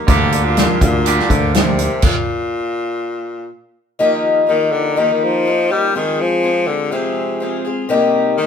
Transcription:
0.00 0.10 G4 medium
0.07 0.65 D2 medium
0.07 1.04 D3 loud
0.07 0.32 D3 medium
0.07 0.45 D3 loud
0.07 0.33 G3 medium
0.07 1.04 A#3 loud
0.07 0.33 A#3 medium
0.07 1.05 D4 medium
0.07 0.32 D4 medium
0.07 0.31 G4 medium
0.07 1.05 G4 loud
0.07 kick loud
0.07 closed hi-hat medium
0.32 0.57 A#3 soft
0.32 0.57 D4 soft
0.32 0.56 G4 medium
0.32 closed hi-hat medium
0.44 0.81 A#2 medium
0.57 0.81 G3 medium
0.57 0.81 A#3 medium
0.57 0.80 D4 medium
0.57 0.79 G4 medium
0.57 snare loud
0.57 closed hi-hat medium
0.80 1.19 D2 medium
0.80 1.27 A#2 loud
0.80 1.54 A#3 soft
0.80 1.55 D4 soft
0.80 1.54 G4 medium
0.80 kick medium
0.80 closed hi-hat medium
1.05 2.02 D3 medium
1.05 2.02 A#3 medium
1.05 2.03 D4 medium
1.05 2.03 G4 medium
1.05 closed hi-hat medium
1.19 snare soft
1.30 1.87 D2 medium
1.30 1.56 D3 loud
1.30 kick medium
1.30 closed hi-hat medium
1.54 2.05 C3 loud
1.54 1.79 G3 medium
1.54 1.79 A#3 medium
1.54 1.79 D4 medium
1.54 1.77 G4 medium
1.54 snare loud
1.54 closed hi-hat medium
1.79 2.04 A#3 soft
1.79 2.04 D4 soft
1.79 2.03 G4 medium
1.79 closed hi-hat medium
2.02 3.50 A#2 medium
2.02 kick loud
2.02 crash medium
3.99 4.48 D#3 medium
3.99 4.46 F3 medium
3.99 5.92 A#3 medium
3.99 4.47 A#3 medium
3.99 5.92 D#4 medium
3.99 4.48 D#4 loud
3.99 5.92 F4 medium
3.99 5.92 G4 medium
3.99 4.48 G4 loud
4.47 4.74 D#3 medium
4.47 4.97 F3 medium
4.47 4.96 A#3 medium
4.47 4.96 D#4 medium
4.47 4.97 G4 medium
4.72 5.00 D3 loud
4.96 5.45 D#3 medium
4.96 5.13 D#3 medium
4.96 5.44 F3 medium
4.96 5.45 A#3 medium
4.96 5.45 D#4 medium
4.96 5.46 G4 medium
5.13 5.25 D#3 medium
5.23 5.73 F3 loud
5.45 5.70 F3 medium
5.45 5.70 A#3 medium
5.45 5.71 D#4 medium
5.45 5.69 G4 medium
5.71 5.95 G3 loud
5.71 5.95 A#3 soft
5.71 5.95 D#4 medium
5.71 5.94 G4 medium
5.94 6.22 D#3 loud
5.94 6.41 F3 medium
5.94 7.87 G#3 medium
5.94 7.87 C4 medium
5.94 6.43 C4 medium
5.94 7.87 F4 medium
5.94 6.43 F4 medium
5.94 7.87 G#4 medium
5.94 6.43 G#4 medium
6.21 6.69 F3 loud
6.43 6.67 F3 medium
6.43 6.67 C4 medium
6.43 6.67 F4 medium
6.43 6.66 G#4 medium
6.67 6.93 D3 loud
6.67 6.91 C4 soft
6.67 6.91 F4 soft
6.67 6.91 G#4 soft
6.91 7.65 C3 medium
6.91 7.39 F3 medium
6.91 7.41 C4 medium
6.91 7.41 F4 medium
6.91 7.41 G#4 medium
7.40 7.64 F3 medium
7.40 7.65 C4 medium
7.40 7.65 F4 medium
7.40 7.63 G#4 medium
7.65 7.89 C4 soft
7.65 7.90 F4 medium
7.65 7.89 G#4 medium
7.89 8.38 C3 loud
7.89 8.37 G3 loud
7.89 8.46 A#3 medium
7.89 8.38 A#3 medium
7.89 8.46 C4 medium
7.89 8.46 D#4 medium
7.89 8.39 D#4 loud
7.89 8.46 G4 medium
7.89 8.40 G4 loud
8.37 8.46 D#3 medium
8.37 8.46 G3 medium
8.37 8.46 A#3 medium
8.37 8.46 D#4 medium
8.37 8.46 G4 medium

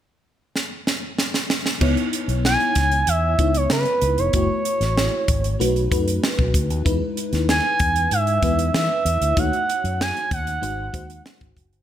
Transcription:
0.56 snare soft
0.87 snare medium
1.18 snare medium
1.34 snare medium
1.50 snare medium
1.66 snare medium
1.81 1.95 C#2 loud
1.81 3.00 B3 medium
1.81 3.00 D#4 medium
1.81 3.00 E4 medium
1.81 3.00 C#5 medium
1.81 kick loud
1.81 crash medium
1.97 closed hi-hat soft
2.13 closed hi-hat medium
2.28 2.55 B1 medium
2.28 closed hi-hat soft
2.45 3.10 G#5 loud
2.45 snare medium
2.60 closed hi-hat soft
2.75 3.03 C#2 medium
2.75 kick medium
2.75 snare soft
2.75 closed hi-hat medium
2.92 closed hi-hat soft
3.07 3.34 E2 medium
3.07 3.58 E5 medium
3.07 closed hi-hat medium
3.39 3.66 C#2 medium
3.39 4.28 B3 medium
3.39 4.28 D#4 medium
3.39 4.28 E4 medium
3.39 4.28 C#5 medium
3.39 kick medium
3.39 closed hi-hat medium
3.54 3.71 C#5 medium
3.54 closed hi-hat medium
3.70 3.84 C#3 medium
3.70 4.20 B4 medium
3.70 snare loud
3.85 closed hi-hat soft
4.02 4.16 C#2 medium
4.02 closed hi-hat medium
4.18 4.31 F1 medium
4.18 4.34 C#5 medium
4.18 closed hi-hat soft
4.33 4.47 F#1 medium
4.33 5.52 A3 medium
4.33 5.52 E4 medium
4.33 5.52 F#4 medium
4.33 5.52 C#5 medium
4.33 5.57 C#5 medium
4.33 kick loud
4.33 closed hi-hat medium
4.65 closed hi-hat medium
4.81 5.07 A1 medium
4.81 snare soft
4.81 closed hi-hat soft
4.97 snare medium
5.28 5.55 G#1 medium
5.28 kick medium
5.28 closed hi-hat medium
5.44 closed hi-hat soft
5.59 5.87 B1 medium
5.59 5.89 A3 medium
5.59 5.89 D#4 medium
5.59 5.89 F#4 medium
5.59 5.89 B4 medium
5.59 closed hi-hat medium
5.76 closed hi-hat soft
5.91 6.18 F#2 medium
5.91 6.79 A3 medium
5.91 6.80 D#4 medium
5.91 6.80 F#4 medium
5.91 6.80 B4 medium
5.91 kick medium
5.91 closed hi-hat medium
6.08 closed hi-hat medium
6.24 snare loud
6.39 6.52 B1 medium
6.39 kick medium
6.54 6.70 D2 medium
6.54 kick medium
6.54 closed hi-hat medium
6.70 6.83 D#2 medium
6.70 closed hi-hat soft
6.85 6.99 E2 loud
6.85 8.03 G#3 medium
6.85 8.03 D#4 medium
6.85 8.03 E4 medium
6.85 8.03 B4 medium
6.85 kick loud
6.85 closed hi-hat medium
7.17 closed hi-hat medium
7.33 7.59 D#2 medium
7.33 snare soft
7.33 closed hi-hat soft
7.49 8.14 G#5 loud
7.49 snare medium
7.79 8.06 E2 medium
7.79 kick medium
7.79 closed hi-hat medium
7.96 closed hi-hat soft
8.11 8.38 G#2 medium
8.11 8.75 E5 medium
8.11 closed hi-hat medium
8.27 closed hi-hat soft
8.42 8.69 E2 medium
8.42 9.31 G#3 medium
8.42 9.31 B3 medium
8.42 9.31 E4 medium
8.42 9.31 B4 medium
8.42 kick medium
8.42 closed hi-hat medium
8.59 closed hi-hat medium
8.74 8.87 E3 medium
8.74 9.40 E5 medium
8.74 snare loud
9.05 9.19 E2 medium
9.05 closed hi-hat medium
9.21 9.34 D2 medium
9.21 closed hi-hat soft
9.37 9.50 D#2 loud
9.37 10.54 A3 medium
9.37 10.55 D#4 medium
9.37 10.55 F#4 medium
9.37 10.55 C#5 medium
9.37 10.00 F#5 loud
9.37 kick medium
9.37 closed hi-hat medium
9.53 closed hi-hat soft
9.69 closed hi-hat medium
9.84 10.10 F#2 medium
9.84 closed hi-hat soft
10.01 10.30 G#5 medium
10.01 snare medium
10.17 closed hi-hat soft
10.31 10.58 D#2 medium
10.31 11.22 F#5 medium
10.31 kick medium
10.31 closed hi-hat medium
10.47 closed hi-hat soft
10.61 10.89 G#1 medium
10.61 10.91 G#3 medium
10.61 10.91 D#4 medium
10.61 10.92 F#4 medium
10.61 10.92 C5 medium
10.61 closed hi-hat medium
10.93 11.20 D#2 medium
10.93 11.81 G#3 medium
10.93 11.82 D#4 medium
10.93 11.82 F#4 medium
10.93 11.82 C5 medium
10.93 kick medium
10.93 closed hi-hat medium
11.10 closed hi-hat medium
11.26 snare loud
11.41 11.54 G#1 medium
11.41 kick medium
11.41 closed hi-hat soft
11.57 11.72 F#1 medium
11.57 kick medium
11.57 closed hi-hat medium
11.72 11.82 G1 medium
11.72 closed hi-hat soft

